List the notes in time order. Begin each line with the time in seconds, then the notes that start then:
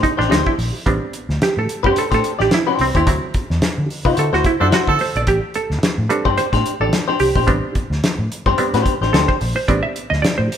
0.03 D#4, kick, closed hi-hat
0.17 A1 D4 G4 C5, snare
0.29 D2 D4 D#4 G4 C5, snare, closed hi-hat
0.46 E4, kick
0.58 A#1, open hi-hat
0.86 A1 G3 B3 C4 D4, kick, closed hi-hat
1.13 closed hi-hat
1.29 D2, snare
1.42 G4, snare, closed hi-hat
1.57 A2 A4
1.69 closed hi-hat
1.83 G2 D4 G4 C5, kick
1.96 A4, muted fingered electric bass stroke, closed hi-hat
2.11 A2 D4 G4 A4 C5, kick, snare, closed hi-hat
2.24 closed hi-hat
2.39 A1 D4 G4 D5, snare
2.51 E4, snare, closed hi-hat
2.67 D4 G4 C5
2.79 C2 C4, open hi-hat
2.95 D#2 D4 E4 G4 C5, kick, closed hi-hat
3.07 D2 F#3 C4 E4, kick, closed hi-hat
3.34 kick, closed hi-hat
3.50 E2, snare
3.62 muted fingered electric bass stroke, snare, closed hi-hat
3.78 D3
3.90 open hi-hat
4.05 C3 E4 F#4 C5, kick
4.17 D3 A4, closed hi-hat
4.33 D2 E4 F#4 C5, snare
4.44 E4, kick, closed hi-hat
4.60 F#2 D4 E4 F#4 A4 C5
4.72 E4 F#4 C5, snare, closed hi-hat
4.87 D3 A4, kick
4.99 C5, open hi-hat
5.15 A#1 D5, closed hi-hat
5.27 A1 G4, kick, closed hi-hat
5.54 A4, closed hi-hat
5.70 D2, snare
5.82 muted fingered electric bass stroke, snare, closed hi-hat
5.98 A2
6.09 G3 C4 D4 A4 B4, closed hi-hat
6.25 G2 D4 G4 C5, kick
6.37 C5, muted fingered electric bass stroke, closed hi-hat
6.53 A2 D4 G4 C5, kick, snare, closed hi-hat
6.66 closed hi-hat
6.80 A1 D4 G4 A4 D5
6.93 snare, closed hi-hat
7.08 D4 G4 C5
7.19 C2 G4, open hi-hat
7.35 A#1 D4 G4 C5, kick
7.47 A1 G3 B3 C4 D4, kick, closed hi-hat
7.75 kick, closed hi-hat
7.90 D2, snare
8.04 snare, closed hi-hat
8.18 A2
8.32 closed hi-hat
8.46 G2 D4 G4 C5, kick
8.58 G3 B3 C4 D4, muted fingered electric bass stroke, closed hi-hat
8.74 A2 D4 G4 C5, snare, closed hi-hat
8.86 kick, closed hi-hat
9.01 A1 D4 G4 C5, snare
9.13 D2 D4 G4 A4 C5, snare, closed hi-hat
9.28 C5, kick
9.41 A#1, open hi-hat
9.56 C5
9.68 A1 G3 B3 C4 D4 D5, kick, closed hi-hat
9.83 E5
9.96 closed hi-hat
10.10 D2 D#5, snare
10.22 D5, muted fingered electric bass stroke, snare, closed hi-hat
10.38 A2 C5
10.52 closed hi-hat